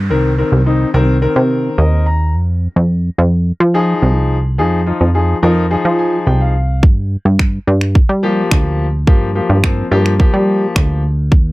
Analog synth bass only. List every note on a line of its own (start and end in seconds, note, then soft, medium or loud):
0.00 0.12 G2 medium
0.10 0.44 C2 loud
0.52 0.86 C2 medium
0.94 1.28 C2 loud
1.36 1.70 C3 medium
1.78 2.36 D#2 medium
2.34 2.68 F2 loud
2.76 3.10 F2 medium
3.18 3.52 F2 loud
3.60 3.94 F3 medium
4.02 4.60 C2 loud
4.59 4.93 F2 loud
5.01 5.35 F2 medium
5.43 5.77 F2 loud
5.85 6.19 F3 medium
6.27 6.84 C2 medium
6.83 7.17 G2 loud
7.25 7.59 G2 medium
7.67 8.01 G2 loud
8.09 8.43 G3 medium
8.51 9.09 D2 loud
9.07 9.41 G2 loud
9.49 9.83 G2 medium
9.91 10.25 G2 loud
10.33 10.67 G3 medium
10.76 11.33 D2 medium
11.32 11.52 D#2 loud